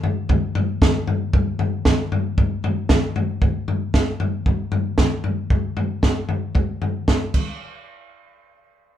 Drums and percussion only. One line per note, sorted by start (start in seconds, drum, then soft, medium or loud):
0.03 floor tom medium
0.29 kick medium
0.29 floor tom medium
0.55 floor tom medium
0.82 kick medium
0.82 snare loud
0.82 floor tom medium
1.07 floor tom medium
1.33 kick medium
1.33 floor tom medium
1.59 floor tom medium
1.85 kick medium
1.85 snare medium
1.85 floor tom medium
2.12 floor tom medium
2.38 kick medium
2.38 floor tom medium
2.64 floor tom medium
2.89 kick medium
2.89 snare medium
2.89 floor tom medium
3.16 floor tom medium
3.42 kick medium
3.42 floor tom medium
3.68 floor tom medium
3.94 kick medium
3.94 snare medium
3.94 floor tom medium
4.20 floor tom medium
4.46 kick medium
4.46 floor tom medium
4.72 floor tom medium
4.98 kick medium
4.98 snare medium
4.98 floor tom medium
5.24 floor tom medium
5.50 kick medium
5.50 floor tom medium
5.77 floor tom medium
6.03 kick medium
6.03 snare medium
6.03 floor tom medium
6.29 floor tom medium
6.55 kick medium
6.55 floor tom medium
6.82 floor tom medium
7.08 kick medium
7.08 snare medium
7.08 floor tom medium
7.34 kick medium
7.34 crash medium